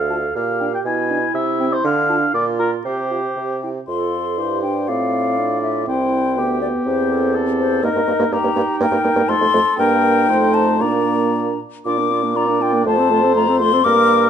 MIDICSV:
0, 0, Header, 1, 6, 480
1, 0, Start_track
1, 0, Tempo, 497512
1, 822, Time_signature, 2, 2, 24, 8
1, 2257, Tempo, 509771
1, 4657, Tempo, 489796
1, 9457, Tempo, 519931
1, 11377, Tempo, 497100
1, 13724, End_track
2, 0, Start_track
2, 0, Title_t, "Flute"
2, 0, Program_c, 0, 73
2, 97, Note_on_c, 0, 81, 33
2, 155, Note_off_c, 0, 81, 0
2, 575, Note_on_c, 0, 79, 38
2, 633, Note_off_c, 0, 79, 0
2, 1060, Note_on_c, 0, 80, 39
2, 1117, Note_off_c, 0, 80, 0
2, 1540, Note_on_c, 0, 79, 49
2, 1598, Note_off_c, 0, 79, 0
2, 2021, Note_on_c, 0, 81, 48
2, 2079, Note_off_c, 0, 81, 0
2, 2493, Note_on_c, 0, 82, 41
2, 2550, Note_off_c, 0, 82, 0
2, 2988, Note_on_c, 0, 79, 29
2, 3045, Note_off_c, 0, 79, 0
2, 3468, Note_on_c, 0, 79, 29
2, 3525, Note_off_c, 0, 79, 0
2, 3707, Note_on_c, 0, 84, 56
2, 4380, Note_off_c, 0, 84, 0
2, 4405, Note_on_c, 0, 79, 51
2, 4651, Note_on_c, 0, 77, 52
2, 4665, Note_off_c, 0, 79, 0
2, 5368, Note_off_c, 0, 77, 0
2, 5374, Note_on_c, 0, 76, 52
2, 5614, Note_off_c, 0, 76, 0
2, 5622, Note_on_c, 0, 79, 62
2, 6337, Note_off_c, 0, 79, 0
2, 6348, Note_on_c, 0, 74, 57
2, 6407, Note_off_c, 0, 74, 0
2, 6592, Note_on_c, 0, 72, 60
2, 7081, Note_off_c, 0, 72, 0
2, 7307, Note_on_c, 0, 72, 62
2, 7545, Note_on_c, 0, 75, 68
2, 7560, Note_off_c, 0, 72, 0
2, 8009, Note_off_c, 0, 75, 0
2, 8015, Note_on_c, 0, 82, 80
2, 8485, Note_off_c, 0, 82, 0
2, 8498, Note_on_c, 0, 79, 83
2, 8969, Note_on_c, 0, 84, 94
2, 8983, Note_off_c, 0, 79, 0
2, 9448, Note_off_c, 0, 84, 0
2, 9454, Note_on_c, 0, 79, 88
2, 10153, Note_on_c, 0, 81, 76
2, 10167, Note_off_c, 0, 79, 0
2, 10405, Note_on_c, 0, 82, 67
2, 10418, Note_off_c, 0, 81, 0
2, 11137, Note_off_c, 0, 82, 0
2, 11369, Note_on_c, 0, 86, 75
2, 11858, Note_on_c, 0, 82, 77
2, 11872, Note_off_c, 0, 86, 0
2, 12104, Note_on_c, 0, 79, 71
2, 12119, Note_off_c, 0, 82, 0
2, 12335, Note_off_c, 0, 79, 0
2, 12341, Note_on_c, 0, 81, 83
2, 12810, Note_off_c, 0, 81, 0
2, 12817, Note_on_c, 0, 82, 87
2, 13046, Note_off_c, 0, 82, 0
2, 13052, Note_on_c, 0, 84, 102
2, 13286, Note_on_c, 0, 86, 102
2, 13301, Note_off_c, 0, 84, 0
2, 13724, Note_off_c, 0, 86, 0
2, 13724, End_track
3, 0, Start_track
3, 0, Title_t, "Oboe"
3, 0, Program_c, 1, 68
3, 0, Note_on_c, 1, 77, 56
3, 307, Note_off_c, 1, 77, 0
3, 345, Note_on_c, 1, 77, 54
3, 697, Note_off_c, 1, 77, 0
3, 721, Note_on_c, 1, 79, 53
3, 771, Note_off_c, 1, 79, 0
3, 831, Note_on_c, 1, 80, 67
3, 1293, Note_off_c, 1, 80, 0
3, 1301, Note_on_c, 1, 76, 65
3, 1669, Note_on_c, 1, 72, 71
3, 1683, Note_off_c, 1, 76, 0
3, 1784, Note_off_c, 1, 72, 0
3, 1790, Note_on_c, 1, 77, 80
3, 2253, Note_off_c, 1, 77, 0
3, 2260, Note_on_c, 1, 74, 67
3, 2366, Note_off_c, 1, 74, 0
3, 2496, Note_on_c, 1, 70, 62
3, 2604, Note_off_c, 1, 70, 0
3, 2740, Note_on_c, 1, 67, 47
3, 3461, Note_off_c, 1, 67, 0
3, 4184, Note_on_c, 1, 72, 40
3, 4653, Note_on_c, 1, 74, 47
3, 4667, Note_off_c, 1, 72, 0
3, 5622, Note_off_c, 1, 74, 0
3, 5630, Note_on_c, 1, 72, 46
3, 6122, Note_on_c, 1, 67, 44
3, 6136, Note_off_c, 1, 72, 0
3, 7068, Note_on_c, 1, 69, 47
3, 7083, Note_off_c, 1, 67, 0
3, 7545, Note_off_c, 1, 69, 0
3, 7551, Note_on_c, 1, 70, 59
3, 8031, Note_on_c, 1, 67, 59
3, 8045, Note_off_c, 1, 70, 0
3, 8508, Note_on_c, 1, 70, 64
3, 8523, Note_off_c, 1, 67, 0
3, 8979, Note_on_c, 1, 69, 62
3, 8994, Note_off_c, 1, 70, 0
3, 9459, Note_off_c, 1, 69, 0
3, 9465, Note_on_c, 1, 70, 70
3, 9919, Note_off_c, 1, 70, 0
3, 9930, Note_on_c, 1, 72, 63
3, 10403, Note_on_c, 1, 74, 60
3, 10417, Note_off_c, 1, 72, 0
3, 11136, Note_off_c, 1, 74, 0
3, 11863, Note_on_c, 1, 74, 63
3, 12308, Note_off_c, 1, 74, 0
3, 12343, Note_on_c, 1, 72, 77
3, 13278, Note_off_c, 1, 72, 0
3, 13303, Note_on_c, 1, 70, 76
3, 13724, Note_off_c, 1, 70, 0
3, 13724, End_track
4, 0, Start_track
4, 0, Title_t, "Clarinet"
4, 0, Program_c, 2, 71
4, 0, Note_on_c, 2, 69, 44
4, 340, Note_on_c, 2, 67, 46
4, 354, Note_off_c, 2, 69, 0
4, 831, Note_on_c, 2, 64, 52
4, 845, Note_off_c, 2, 67, 0
4, 1783, Note_on_c, 2, 62, 48
4, 1798, Note_off_c, 2, 64, 0
4, 2257, Note_on_c, 2, 65, 56
4, 2271, Note_off_c, 2, 62, 0
4, 2732, Note_off_c, 2, 65, 0
4, 2738, Note_on_c, 2, 72, 44
4, 3459, Note_off_c, 2, 72, 0
4, 3714, Note_on_c, 2, 69, 34
4, 4185, Note_on_c, 2, 67, 36
4, 4199, Note_off_c, 2, 69, 0
4, 4651, Note_on_c, 2, 65, 37
4, 4665, Note_off_c, 2, 67, 0
4, 5620, Note_on_c, 2, 64, 38
4, 5634, Note_off_c, 2, 65, 0
4, 6113, Note_on_c, 2, 67, 44
4, 6128, Note_off_c, 2, 64, 0
4, 6587, Note_off_c, 2, 67, 0
4, 6593, Note_on_c, 2, 67, 43
4, 6833, Note_on_c, 2, 69, 46
4, 6848, Note_off_c, 2, 67, 0
4, 7071, Note_on_c, 2, 67, 50
4, 7086, Note_off_c, 2, 69, 0
4, 7535, Note_off_c, 2, 67, 0
4, 7541, Note_on_c, 2, 63, 51
4, 9289, Note_off_c, 2, 63, 0
4, 9455, Note_on_c, 2, 62, 62
4, 9911, Note_on_c, 2, 63, 56
4, 9925, Note_off_c, 2, 62, 0
4, 10387, Note_off_c, 2, 63, 0
4, 10393, Note_on_c, 2, 62, 50
4, 11116, Note_off_c, 2, 62, 0
4, 11365, Note_on_c, 2, 65, 50
4, 11491, Note_on_c, 2, 62, 45
4, 11505, Note_off_c, 2, 65, 0
4, 11607, Note_on_c, 2, 65, 46
4, 11621, Note_off_c, 2, 62, 0
4, 11724, Note_on_c, 2, 62, 43
4, 11738, Note_off_c, 2, 65, 0
4, 11847, Note_off_c, 2, 62, 0
4, 11853, Note_on_c, 2, 65, 51
4, 11978, Note_on_c, 2, 62, 47
4, 11992, Note_off_c, 2, 65, 0
4, 12096, Note_on_c, 2, 65, 51
4, 12111, Note_off_c, 2, 62, 0
4, 12216, Note_on_c, 2, 62, 49
4, 12231, Note_off_c, 2, 65, 0
4, 12330, Note_off_c, 2, 62, 0
4, 12336, Note_on_c, 2, 65, 60
4, 12456, Note_on_c, 2, 69, 55
4, 12471, Note_off_c, 2, 65, 0
4, 12574, Note_on_c, 2, 65, 57
4, 12588, Note_off_c, 2, 69, 0
4, 12695, Note_on_c, 2, 69, 53
4, 12709, Note_off_c, 2, 65, 0
4, 12803, Note_off_c, 2, 69, 0
4, 12809, Note_on_c, 2, 65, 62
4, 12934, Note_on_c, 2, 69, 57
4, 12948, Note_off_c, 2, 65, 0
4, 13053, Note_on_c, 2, 65, 57
4, 13067, Note_off_c, 2, 69, 0
4, 13173, Note_on_c, 2, 69, 57
4, 13187, Note_off_c, 2, 65, 0
4, 13275, Note_off_c, 2, 69, 0
4, 13281, Note_on_c, 2, 70, 63
4, 13724, Note_off_c, 2, 70, 0
4, 13724, End_track
5, 0, Start_track
5, 0, Title_t, "French horn"
5, 0, Program_c, 3, 60
5, 99, Note_on_c, 3, 65, 33
5, 187, Note_off_c, 3, 65, 0
5, 589, Note_on_c, 3, 62, 36
5, 674, Note_off_c, 3, 62, 0
5, 1062, Note_on_c, 3, 62, 42
5, 1147, Note_off_c, 3, 62, 0
5, 1543, Note_on_c, 3, 60, 45
5, 1629, Note_off_c, 3, 60, 0
5, 2021, Note_on_c, 3, 65, 51
5, 2106, Note_off_c, 3, 65, 0
5, 2498, Note_on_c, 3, 65, 37
5, 2584, Note_off_c, 3, 65, 0
5, 2979, Note_on_c, 3, 65, 31
5, 3068, Note_off_c, 3, 65, 0
5, 3477, Note_on_c, 3, 64, 26
5, 3563, Note_off_c, 3, 64, 0
5, 3715, Note_on_c, 3, 65, 38
5, 4179, Note_on_c, 3, 64, 40
5, 4193, Note_off_c, 3, 65, 0
5, 4422, Note_on_c, 3, 62, 38
5, 4436, Note_off_c, 3, 64, 0
5, 4660, Note_on_c, 3, 60, 38
5, 4675, Note_off_c, 3, 62, 0
5, 5140, Note_on_c, 3, 62, 41
5, 5154, Note_off_c, 3, 60, 0
5, 5615, Note_off_c, 3, 62, 0
5, 5621, Note_on_c, 3, 60, 40
5, 6105, Note_on_c, 3, 59, 42
5, 6120, Note_off_c, 3, 60, 0
5, 6346, Note_off_c, 3, 59, 0
5, 6352, Note_on_c, 3, 59, 45
5, 6586, Note_on_c, 3, 60, 45
5, 6601, Note_off_c, 3, 59, 0
5, 7061, Note_off_c, 3, 60, 0
5, 7067, Note_on_c, 3, 60, 46
5, 7535, Note_off_c, 3, 60, 0
5, 7542, Note_on_c, 3, 58, 65
5, 7597, Note_off_c, 3, 58, 0
5, 7664, Note_on_c, 3, 58, 45
5, 7717, Note_off_c, 3, 58, 0
5, 7782, Note_on_c, 3, 58, 46
5, 7836, Note_off_c, 3, 58, 0
5, 7898, Note_on_c, 3, 58, 68
5, 7953, Note_off_c, 3, 58, 0
5, 8016, Note_on_c, 3, 58, 46
5, 8071, Note_off_c, 3, 58, 0
5, 8138, Note_on_c, 3, 58, 46
5, 8193, Note_off_c, 3, 58, 0
5, 8254, Note_on_c, 3, 58, 57
5, 8309, Note_off_c, 3, 58, 0
5, 8498, Note_on_c, 3, 58, 65
5, 8552, Note_off_c, 3, 58, 0
5, 8620, Note_on_c, 3, 58, 53
5, 8672, Note_off_c, 3, 58, 0
5, 8732, Note_on_c, 3, 58, 51
5, 8786, Note_off_c, 3, 58, 0
5, 8850, Note_on_c, 3, 58, 71
5, 8904, Note_off_c, 3, 58, 0
5, 8974, Note_on_c, 3, 57, 46
5, 9028, Note_off_c, 3, 57, 0
5, 9095, Note_on_c, 3, 57, 48
5, 9149, Note_off_c, 3, 57, 0
5, 9217, Note_on_c, 3, 57, 67
5, 9270, Note_off_c, 3, 57, 0
5, 9448, Note_on_c, 3, 58, 64
5, 9921, Note_on_c, 3, 57, 57
5, 9935, Note_off_c, 3, 58, 0
5, 10407, Note_on_c, 3, 58, 51
5, 10421, Note_off_c, 3, 57, 0
5, 11138, Note_off_c, 3, 58, 0
5, 11373, Note_on_c, 3, 62, 54
5, 11495, Note_on_c, 3, 58, 45
5, 11509, Note_off_c, 3, 62, 0
5, 11616, Note_on_c, 3, 62, 46
5, 11630, Note_off_c, 3, 58, 0
5, 11731, Note_on_c, 3, 58, 46
5, 11746, Note_off_c, 3, 62, 0
5, 11847, Note_off_c, 3, 58, 0
5, 11853, Note_on_c, 3, 62, 49
5, 11967, Note_on_c, 3, 58, 48
5, 11982, Note_off_c, 3, 62, 0
5, 12090, Note_on_c, 3, 62, 50
5, 12104, Note_off_c, 3, 58, 0
5, 12213, Note_on_c, 3, 58, 55
5, 12228, Note_off_c, 3, 62, 0
5, 12328, Note_off_c, 3, 58, 0
5, 12334, Note_on_c, 3, 57, 62
5, 12452, Note_on_c, 3, 60, 54
5, 12466, Note_off_c, 3, 57, 0
5, 12570, Note_on_c, 3, 57, 57
5, 12584, Note_off_c, 3, 60, 0
5, 12695, Note_on_c, 3, 60, 55
5, 12710, Note_off_c, 3, 57, 0
5, 12811, Note_off_c, 3, 60, 0
5, 12817, Note_on_c, 3, 57, 60
5, 12933, Note_on_c, 3, 60, 53
5, 12947, Note_off_c, 3, 57, 0
5, 13066, Note_on_c, 3, 57, 58
5, 13080, Note_off_c, 3, 60, 0
5, 13176, Note_on_c, 3, 60, 58
5, 13190, Note_off_c, 3, 57, 0
5, 13285, Note_off_c, 3, 60, 0
5, 13291, Note_on_c, 3, 58, 71
5, 13724, Note_off_c, 3, 58, 0
5, 13724, End_track
6, 0, Start_track
6, 0, Title_t, "Bassoon"
6, 0, Program_c, 4, 70
6, 0, Note_on_c, 4, 38, 41
6, 263, Note_off_c, 4, 38, 0
6, 345, Note_on_c, 4, 46, 40
6, 743, Note_off_c, 4, 46, 0
6, 818, Note_on_c, 4, 47, 44
6, 1215, Note_off_c, 4, 47, 0
6, 1298, Note_on_c, 4, 48, 48
6, 1699, Note_off_c, 4, 48, 0
6, 1780, Note_on_c, 4, 50, 65
6, 2177, Note_off_c, 4, 50, 0
6, 2258, Note_on_c, 4, 46, 54
6, 2655, Note_off_c, 4, 46, 0
6, 2737, Note_on_c, 4, 48, 42
6, 3148, Note_off_c, 4, 48, 0
6, 3228, Note_on_c, 4, 48, 32
6, 3633, Note_off_c, 4, 48, 0
6, 3706, Note_on_c, 4, 41, 35
6, 4180, Note_on_c, 4, 43, 36
6, 4194, Note_off_c, 4, 41, 0
6, 4655, Note_on_c, 4, 45, 41
6, 4669, Note_off_c, 4, 43, 0
6, 5619, Note_off_c, 4, 45, 0
6, 5625, Note_on_c, 4, 36, 39
6, 6114, Note_on_c, 4, 38, 40
6, 6128, Note_off_c, 4, 36, 0
6, 6451, Note_off_c, 4, 38, 0
6, 6593, Note_on_c, 4, 40, 50
6, 7526, Note_off_c, 4, 40, 0
6, 7542, Note_on_c, 4, 43, 58
6, 7597, Note_off_c, 4, 43, 0
6, 7666, Note_on_c, 4, 43, 45
6, 7719, Note_off_c, 4, 43, 0
6, 7777, Note_on_c, 4, 43, 41
6, 7832, Note_off_c, 4, 43, 0
6, 7895, Note_on_c, 4, 43, 66
6, 7951, Note_off_c, 4, 43, 0
6, 8023, Note_on_c, 4, 43, 46
6, 8076, Note_off_c, 4, 43, 0
6, 8137, Note_on_c, 4, 43, 53
6, 8192, Note_off_c, 4, 43, 0
6, 8258, Note_on_c, 4, 43, 65
6, 8312, Note_off_c, 4, 43, 0
6, 8496, Note_on_c, 4, 43, 70
6, 8549, Note_off_c, 4, 43, 0
6, 8602, Note_on_c, 4, 43, 48
6, 8659, Note_off_c, 4, 43, 0
6, 8730, Note_on_c, 4, 43, 47
6, 8784, Note_off_c, 4, 43, 0
6, 8840, Note_on_c, 4, 43, 68
6, 8897, Note_off_c, 4, 43, 0
6, 8969, Note_on_c, 4, 41, 46
6, 9024, Note_off_c, 4, 41, 0
6, 9085, Note_on_c, 4, 41, 52
6, 9141, Note_off_c, 4, 41, 0
6, 9210, Note_on_c, 4, 41, 72
6, 9265, Note_off_c, 4, 41, 0
6, 9455, Note_on_c, 4, 43, 60
6, 9890, Note_off_c, 4, 43, 0
6, 9921, Note_on_c, 4, 41, 53
6, 10401, Note_on_c, 4, 46, 50
6, 10415, Note_off_c, 4, 41, 0
6, 11135, Note_off_c, 4, 46, 0
6, 11371, Note_on_c, 4, 46, 57
6, 12334, Note_on_c, 4, 41, 66
6, 12348, Note_off_c, 4, 46, 0
6, 13293, Note_off_c, 4, 41, 0
6, 13298, Note_on_c, 4, 43, 66
6, 13724, Note_off_c, 4, 43, 0
6, 13724, End_track
0, 0, End_of_file